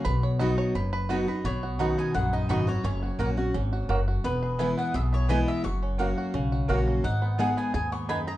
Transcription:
<<
  \new Staff \with { instrumentName = "Mandolin" } { \time 4/4 \key b \major \tempo 4 = 172 r1 | cis''4. gis''8 fis''8 dis''8 dis''8 cis''8 | cis''2.~ cis''8 r8 | b'4. fis''8 e''8 cis''8 dis''8 e''8 |
cis'''2.~ cis'''8 r8 | fis''4 fis''8 gis''8 gis''8 cis'''8 b''8 ais''8 | }
  \new Staff \with { instrumentName = "Mandolin" } { \time 4/4 \key b \major r4 <b fis' dis'' b''>16 r4. r16 <b fis' dis'' b''>16 r8. | r4 <dis' b' fis'' cis'''>16 r4. r16 <dis' b' fis'' cis'''>16 r8. | r4 <ais fis' cis'' fis''>16 r4. r16 <ais fis' cis'' fis''>16 r8. | r4 <b e' b' gis''>16 r4. r16 <b e' b' gis''>16 r8. |
r4 <ais fis' cis'' fis''>16 r4. r16 <ais fis' cis'' fis''>16 r8. | r4 <b gis' dis'' gis''>16 r4. r16 <b gis' dis'' gis''>16 r8. | }
  \new Staff \with { instrumentName = "Five-string banjo" } { \time 4/4 \key b \major << { b'8 cis''8 dis''8 cis''4 b'8 fis'4 | r1 | r1 | r1 |
r1 | r1 | } \\ { r2 b'4. b'8 | b8 fis'8 dis'8 b8 fis'8 dis'8 b'8 fis'8 | cis'8 fis'8 fis'8 fis'8 cis'8 fis'8 fis'8 fis'8 | b8 gis'8 e'8 b8 gis'8 e'8 b'8 gis'8 |
fis'8 cis'8 fis'8 fis'8 cis'8 fis'8 fis'8 cis'8 | dis'8 b8 gis'8 b8 gis'8 b8 dis'8 gis'8 | } >> }
  \new Staff \with { instrumentName = "Steel-string acoustic guitar" } { \time 4/4 \key b \major << { r4 <fis b dis' fis'>4 r4 <fis b dis' fis'>8 <dis' fis'>8 | r4 <b, dis cis' fis'>4 r4 <b, dis cis' fis'>8 <cis' fis'>8 | r4 <fis ais cis' fis'>8 <cis' fis'>8 r2 | r4 <e gis b e'>4 r4 <e gis b e'>4 |
r4 <fis ais cis' fis'>4 r4 <fis ais cis' fis'>4 | r4 <gis b dis' gis'>4 r2 | } \\ { b,2 fis,2 | b,2 fis,2 | fis,2 gis,4 fis,4 | e,2 b,2 |
fis,2 cis2 | gis,2 gis,4 fis,4 | } >> }
  \new Staff \with { instrumentName = "Upright bass" } { \clef bass \time 4/4 \key b \major b,,2 fis,,2 | b,,2 ais,,4 gis,,4 | fis,,4 ais,,4 gis,,4 fis,,4 | e,,2 b,,2 |
fis,,2 b,,4 ais,,4 | gis,,2 dis,2 | }
>>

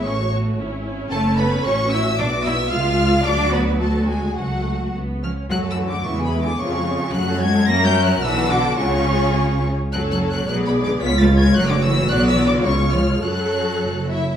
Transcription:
<<
  \new Staff \with { instrumentName = "Violin section" } { \time 2/4 \key a \major \tempo 4 = 110 cis'''8 r4. | \key fis \minor a''8 b''8 cis'''8 e'''8 | d'''8 e'''8 eis'''4 | d'''8 b''8 a''8 gis''8 |
fis''4 r8 eis'''8 | \tuplet 3/2 { fis'''8 e'''8 d'''8 cis'''8 b''8 d'''8 } | cis'''4 fis'''8 gis'''8 | \tuplet 3/2 { ais'''8 g'''8 fis'''8 } e'''8 d'''8 |
cis'''4. r8 | \tuplet 3/2 { fis'''8 fis'''8 fis'''8 fis'''8 b''8 d'''8 } | \tuplet 3/2 { b'''8 a'''8 gis'''8 } fis'''16 d'''16 e'''8 | \tuplet 3/2 { fis'''8 e'''8 d'''8 } cis'''8 eis'''8 |
fis'''4. e''8 | }
  \new Staff \with { instrumentName = "Violin section" } { \time 2/4 \key a \major << { cis''8 r4. | \key fis \minor a'8 b'8 cis''8 e''8 | d''8 e''8 eis''4 | d''8 b'8 a'8 gis'8 |
fis'4 r4 | cis''16 fis''16 cis''16 fis''16 e''16 gis''16 e''16 gis''16 | cis''16 eis''16 cis''16 eis''16 cis''16 fis''16 cis''16 fis''16 | e''4 fis''4 |
cis''4.~ cis''16 r16 | cis''4 d''4 | cis''2 | d''2 |
cis''4. e'8 | } \\ { r2 | r2 | r2 | r2 |
r2 | fis'16 a'16 fis'16 a'16 b'16 gis'16 b'16 gis'16 | eis'16 gis'16 eis'16 gis'16 fis'16 a'16 fis'16 a'16 | ais'4 b'8 a'8 |
gis'4.~ gis'16 r16 | a'4 b'4~ | b'4 cis''4 | d''4 cis''4 |
a'4. r8 | } >> }
  \new Staff \with { instrumentName = "Viola section" } { \time 2/4 \key a \major << { fis'4 e'4 | \key fis \minor a'4 fis'4 | fis'4 eis'4 | fis'4 fis'4 |
fis'4 b8 cis'8 | a'16 fis'16 a'16 fis'16 e'16 gis'16 e'16 gis'16 | gis'16 eis'16 gis'16 eis'16 fis'16 a'16 fis'16 a'16 | fis'4 fis'4 |
eis'4.~ eis'16 r16 | a'4 gis'4 | eis'4 fis'4 | fis'4 eis'4 |
a'4.~ a'16 r16 | } \\ { a8 a8 cis'8 cis'8~ | cis'2 | b4 gis4 | fis4 fis8 gis8 |
a4 r4 | fis16 a16 fis16 a16 gis16 b16 gis16 b16 | eis16 gis16 eis16 gis16 a16 cis'16 a16 cis'16 | cis'4 d'4 |
cis'4.~ cis'16 r16 | cis'4 gis4~ | gis4 a4 | b4 gis4 |
fis4.~ fis16 r16 | } >> }
  \new Staff \with { instrumentName = "Cello section" } { \clef bass \time 2/4 \key a \major cis'8 r4. | \key fis \minor a8 b8 cis'8 e'8 | d'8 e'8 eis'4 | d'8 b8 a8 gis8 |
fis4 r8 eis8 | \tuplet 3/2 { fis8 e8 d8 cis8 b,8 d8 } | cis4 fis8 gis8 | \tuplet 3/2 { ais8 g8 fis8 } e8 d8 |
cis4. r8 | \tuplet 3/2 { fis8 fis8 fis8 fis8 b,8 d8 } | \tuplet 3/2 { b8 a8 gis8 } fis16 d16 e8 | \tuplet 3/2 { fis8 e8 d8 } cis8 eis8 |
fis4. r8 | }
  \new Staff \with { instrumentName = "Double bass section" } { \clef bass \time 2/4 \key a \major a,,4 gis,,4 | \key fis \minor fis,,4 a,,4 | b,,4 cis,4 | d,2 |
cis,4 cis,8 r8 | fis,4 e,4 | eis,4 fis,4 | fis,4 b,,4 |
cis,4. r8 | fis,,4 b,,4 | cis,4 fis,,4 | b,,4 cis,4 |
fis,4 fis,,4 | }
>>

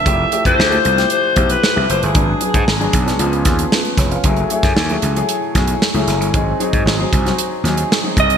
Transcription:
<<
  \new Staff \with { instrumentName = "Alto saxophone" } { \time 4/4 \key gis \phrygian \tempo 4 = 115 e''8. c''4~ c''16 c''8. b'8. c''16 gis'16~ | gis'4.~ gis'16 r2 r16 | r1 | r2. r8 dis''8 | }
  \new Staff \with { instrumentName = "Grand piano" } { \time 4/4 \key gis \phrygian << { r1 | r2. <eis' b'>8 <gis' cis''>16 <b' eis''>16~ | <b' eis''>16 r2. r8. | r1 | } \\ { <f a e' g'>8 <f a e' g'>8. <f a e' g'>8 <f a e' g'>8. <f a e' g'>8. <f a e' g'>8. | <fis b d' gis'>8 <fis b d' gis'>8. <fis b d' gis'>8 <fis b d' gis'>16 <eis b cis' gis'>8 <eis b cis' gis'>8. r8. | <fis a e' gis'>8 <fis a e' gis'>8. <fis a e' gis'>8 <fis a e' gis'>8. <fis a e' gis'>8. <fis a e' gis'>8. | <fis bis dis' gis'>8 <fis bis dis' gis'>8. <fis bis dis' gis'>8 <fis bis dis' gis'>8. <fis bis dis' gis'>8. <fis bis dis' gis'>8. | } >> }
  \new Staff \with { instrumentName = "Slap bass" } { \clef bass \time 4/4 \key gis \phrygian f,,8 r16 f,16 d,8 c,8 r8 b,,8 r16 c,16 fis,,16 g,,16 | gis,,8 r16 gis,16 gis,,8 b,,8 cis,8 dis,8 r8 eis,,8 | fis,,8 r16 fis,16 dis,8 cis,8 r8 b,,8 r16 cis,16 fis,,16 g,,16 | gis,,8 r16 gis,16 gis,,8 bis,,8 r8 dis,8 r8 bis,,8 | }
  \new DrumStaff \with { instrumentName = "Drums" } \drummode { \time 4/4 <hh bd>8 hh16 <hh bd>16 sn16 hh16 hh16 <hh sn>16 hh8 <hh bd>16 hh16 sn8 hh16 hh16 | <hh bd>8 hh16 <hh bd>16 sn16 hh16 <hh bd>16 <hh sn>16 hh16 hh16 <hh bd sn>16 hh16 sn16 hh16 <hh bd sn>16 hh16 | <hh bd>16 hh16 hh16 <hh bd sn>16 sn16 hh16 hh16 hh16 hh8 <hh bd sn>16 hh16 sn16 hh16 <hh sn>16 hh16 | <hh bd>8 hh16 <hh bd>16 sn8 <hh bd>16 <hh sn>16 hh8 <hh sn>16 hh16 sn8 <hh bd>16 hh16 | }
>>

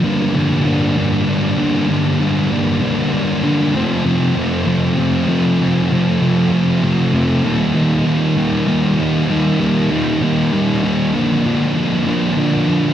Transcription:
\new Staff \with { instrumentName = "Distorted electric guitar" } { \clef bass \time 3/4 \key g \minor \tempo 4 = 97 <g, d g bes d'>8 <g, d g bes d'>8 <g, d g bes d'>8 <g, d g bes d'>8 <g, d g bes d'>8 <g, d g bes d'>8 | <g, d g bes d'>8 <g, d g bes d'>8 <g, d g bes d'>8 <g, d g bes d'>8 <g, d g bes d'>8 <g, d g bes d'>8 | <f, c f a c'>8 <f, c f a c'>8 <f, c f a c'>8 <f, c f a c'>8 <f, c f a c'>8 <f, c f a c'>8 | <f, c f a c'>8 <f, c f a c'>8 <f, c f a c'>8 <f, c f a c'>8 <f, c f a c'>8 <f, c f a c'>8 |
<ees g bes ees'>8 <ees g bes ees'>8 <ees g bes ees'>8 <ees g bes ees'>8 <ees g bes ees'>8 <ees g bes ees'>8 | <ees g bes ees'>8 <ees g bes ees'>8 <ees g bes ees'>8 <ees g bes ees'>8 <ees g bes ees'>8 <ees g bes ees'>8 | <d f bes d'>8 <d f bes d'>8 <d f bes d'>8 <d f bes d'>8 <d f bes d'>8 <d f bes d'>8 | }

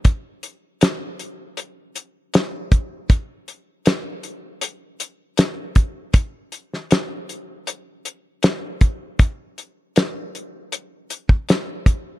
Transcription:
\new DrumStaff \with { instrumentName = "Drums" } \drummode { \time 4/4 \tempo 4 = 79 <hh bd>8 hh8 <hh sn>8 hh8 hh8 hh8 <hh sn>8 <hh bd>8 | <hh bd>8 hh8 <hh sn>8 hh8 hh8 hh8 <hh sn>8 <hh bd>8 | <hh bd>8 hh16 sn16 <hh sn>8 hh8 hh8 hh8 <hh sn>8 <hh bd>8 | <hh bd>8 hh8 <hh sn>8 hh8 hh8 hh16 bd16 <hh sn>8 <hh bd>8 | }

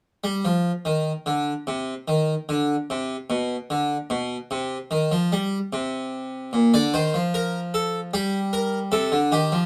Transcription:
\new Staff \with { instrumentName = "Harpsichord" } { \clef bass \time 4/4 \key bes \mixolydian \tempo 4 = 74 << { r16 g16 f8 ees8 d8 c8 ees8 d8 c8 | b,8 d8 b,8 c8 ees16 f16 g8 c4 | r16 d''16 c''8 bes'8 a'8 g'8 bes'8 a'8 g'8 | } \\ { r1 | r1 | bes,16 d16 ees16 f4~ f16 g4 c16 d16 ees16 f16 | } >> }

